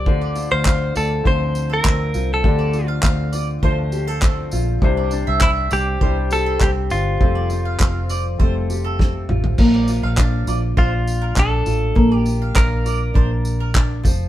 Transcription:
Already playing: F3 C4 G4 A4 D5
0.06 D2 D3 A3 D4 F4 C5, kick
0.21 D5
0.35 F4, tambourine
0.51 D2 C5 F5
0.65 C4 F5, kick, clap
0.95 D2 F4 A4 D5, tambourine
1.24 D2 F3 C4 D4 F4 C5, kick
1.55 tambourine
1.70 A4 A#4
1.84 D2 C4, kick, clap
2.14 C2 F4, tambourine
2.34 A4
2.43 D2 D3 A3 D4 F4 G4, kick
2.59 D5
2.73 F4, tambourine
2.88 F5
3.03 D2 C4 F5, kick, clap
3.33 F4 D5, tambourine
3.63 D2 F3 A3 D4 F4 C5, kick
3.92 G4, tambourine
4.07 A4
4.22 C4, kick, clap
4.51 A#1 F4, tambourine
4.81 C2 C3 G3 D4 E4 C5, kick
4.97 D5
5.11 D4, tambourine
5.27 C2 E5
5.41 C4 E4 E5, kick, clap
5.71 C2 D4 G4 D5, tambourine
6.00 C2 G3 D4 E4 C5, kick
6.31 G4 A4, tambourine
6.46 A4
6.61 C2 C4 G4, kick, clap
6.90 G1 D4 F4, tambourine
7.20 F1 F3 G3 C4 F4 A4, kick
7.35 D5
7.50 F4, tambourine
7.65 F5
7.80 F1 C4 F5, kick, clap
8.09 F4 D5, tambourine
8.38 F1 G3 A3 C4 F4 A4 C5, kick
8.70 G4, tambourine
8.84 A4
8.99 C4, kick, snare
9.29 A1 F4, mid tom
9.44 floor tom
9.58 A#1 A#3, kick, crash
9.74 D5
9.88 F4, tambourine
10.03 A#1 F5
10.17 D4 F5, kick, clap
10.47 A#1 F4 D5, tambourine
10.77 A#1 D4 F4 C5, kick
11.07 tambourine
11.22 A#4
11.36 A#1 D4 A4, kick, clap
11.66 A1 F4, tambourine
11.95 A#1 A#3, kick
12.12 D5
12.17 G4
12.26 F4, tambourine
12.42 F5
12.54 A#1 D4 A#4 F5, kick, clap
12.85 F4 D5, tambourine
13.14 A#1 D4 C5, kick
13.45 tambourine
13.60 A#4
13.74 D4, kick, clap
14.03 F1 F3, kick, tambourine

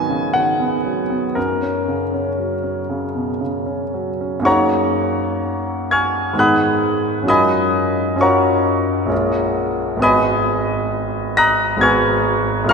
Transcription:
Already playing: G#2 D#3 F#3 B3 C#5 G#5
0.09 C#3
0.34 D#3 F#5
0.60 B3
0.85 F#3
1.10 B3
1.35 F#2 A#4
1.62 C#4
1.88 C#3
2.14 C#4
2.39 F#3
2.64 C#4
2.90 C#3
3.15 B2
3.41 C#3
3.66 C#4
3.94 F#3
4.21 C#4
4.39 F#2 F#3 A#3 D#4
4.45 G#4 C#5 F#5 A#5 C#6
5.91 G#5 C#6 F6 G#6
6.33 G#2 D#3 B3 D#4
6.39 G#4 F#5 B5 D#6 F#6
7.22 F#2 F#3 C#4
7.27 F4 A#4 D#5 G#5 B5 D#6
8.16 F#2 F#3 C#4
8.20 F4 A#4 C#5 F#5 A#5 C#6
9.06 A#1 G#3 C#4
9.10 F4 A#4
9.97 G#1 G#3 B3
10.01 F#4 B4 D#5 G#5 B5 D#6
11.37 A#5 D#6 F#6 A#6
11.76 G#1 G#3 B3 F#4
11.81 B4 G#5 C#6 F6 G#6
12.64 A#1 G#3 C#4 F4
12.69 A#4 F6

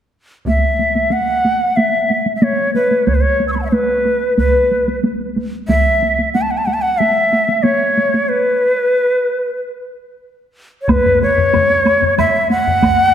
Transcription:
0.46 E5, taiko, taiko high
0.79 taiko high
0.95 taiko high
1.11 F#5, taiko high
1.45 taiko high
1.76 E5, taiko high
2.10 taiko high
2.26 taiko high
2.36 E5
2.42 C#5, taiko high
2.75 B4, taiko high
2.91 taiko high
3.07 C#5, taiko, taiko high
3.15 B4
3.21 C#5
3.40 taiko high
3.48 E6
3.52 B5 C#6, taiko high
3.59 F#5 A5
3.65 E5
3.70 B4 C#5, taiko high
4.05 taiko high
4.38 B4, taiko, taiko high
4.71 taiko high
4.88 taiko high
5.04 taiko high
5.36 taiko high
5.68 E5, taiko, taiko high
6.02 taiko high
6.19 taiko high
6.34 F#5, taiko high
6.42 A5
6.51 F#5
6.57 A5
6.66 F#5, taiko high
6.74 A5
6.82 F#5
6.98 E5, taiko high
7.33 taiko high
7.49 taiko high
7.63 C#5, taiko high
7.97 taiko high
8.14 taiko high
8.29 B4
10.82 C#5
10.88 B4, taiko, taiko low-mid, taiko high, high woodblock
11.05 taiko low-mid, taiko high
11.22 C#5, taiko low-mid, taiko high
11.38 taiko low-mid, taiko high
11.54 taiko low-mid, taiko high, high woodblock
11.70 taiko high
11.85 taiko high, high woodblock
12.02 taiko low-mid, taiko high
12.18 E5, taiko low-mid, taiko high, high woodblock
12.50 F#5, taiko high
12.67 taiko low-mid, taiko high
12.82 taiko, taiko low-mid, taiko high, high woodblock
12.99 taiko high

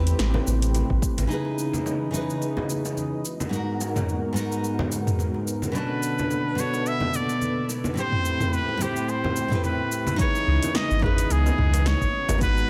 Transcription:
Already playing: E2 C3 A3 C4 E4 G4 B4
0.07 closed hi-hat, cabasa
0.19 A1, snare, closed hi-hat, cabasa
0.34 high conga, low conga
0.47 A1, cabasa
0.62 closed hi-hat, cabasa
0.74 closed hi-hat, high conga, cabasa
0.90 A1, kick
1.02 kick, cabasa
1.18 A1, closed hi-hat, high conga, cabasa
1.27 C#3 E3 C#4 D#4 E4 B4 D#5, cabasa
1.32 G#4 B4
1.45 high bongo
1.59 cabasa
1.73 high conga, cabasa
1.86 high bongo, cabasa
2.11 C#3 D#4 E4, high conga, cabasa
2.15 G#4 B4
2.30 cabasa
2.42 high bongo, cabasa
2.57 high conga, low conga
2.70 cabasa
2.85 high bongo, cabasa
2.97 high conga, cabasa
3.24 G#3 B3 F#4 A#4, cabasa
3.40 high bongo, high conga, cabasa
3.49 G#2 D#4, cabasa
3.54 F#4 A#4
3.81 high bongo, cabasa
3.96 mid tom, high conga, cabasa
4.09 cabasa
4.33 G#2 B3 D#4, high bongo, cabasa
4.37 F#4 A#4
4.52 cabasa
4.64 cabasa
4.79 high bongo, high conga, low conga
4.92 cabasa
5.07 mid tom, cabasa
5.19 high conga, cabasa
5.34 high bongo
5.48 cabasa
5.62 high conga, cabasa
5.72 B2 D3 C#4 D4 A4 B4, high bongo, cabasa
5.76 F#4 A4 B4
6.03 cabasa
6.19 high conga, cabasa
6.30 high bongo, cabasa
6.55 B2 B3 D4, cabasa
6.60 F#4 A4 C#5
6.73 high bongo, cabasa
6.86 E5, cabasa
7.00 high conga, low conga
7.14 D5, cabasa
7.29 high bongo, cabasa
7.42 high conga, cabasa
7.69 high bongo, cabasa
7.84 high conga, cabasa
7.94 A2 A3 C4 E4 G4 B5, cabasa
7.98 G4 C5
8.12 mid tom
8.24 high bongo, cabasa
8.40 mid tom, high conga, cabasa
8.53 B4, cabasa
8.69 high bongo
8.77 A2 C4 E4, high conga, cabasa
8.82 G4 C5
8.96 cabasa
9.09 C5, cabasa
9.24 high bongo, high conga, low conga
9.36 cabasa
9.48 A2 C4 E4, mid tom, cabasa
9.53 G4 B4
9.63 B4, high bongo, high conga, cabasa
9.92 cabasa
10.07 high conga, cabasa
10.16 C#3 E3 B3 D#4 E4 C#5 D#5, kick, closed hi-hat, cabasa
10.20 G#4 B4
10.35 high bongo, cabasa
10.47 C#2
10.63 closed hi-hat, high conga, cabasa
10.75 D#5, snare, closed hi-hat, high bongo, cabasa
10.91 G#1, cabasa
10.99 D#4 E4 B4, kick, mid tom, low conga
11.04 G#4 B4
11.18 closed hi-hat, cabasa
11.30 C#2 G#4, closed hi-hat, high bongo, cabasa
11.46 high conga, cabasa
11.58 C#2, mid tom
11.74 closed hi-hat, high bongo, cabasa
11.86 C#5, snare, closed hi-hat, high conga, cabasa
12.01 G#1, kick, cabasa
12.13 B2 G#3 F#4 A#5
12.29 G#1, closed hi-hat, high bongo, high conga, low conga, cabasa
12.38 B3 D#4, kick, closed hi-hat, cabasa
12.42 F#4 B4
12.57 cabasa

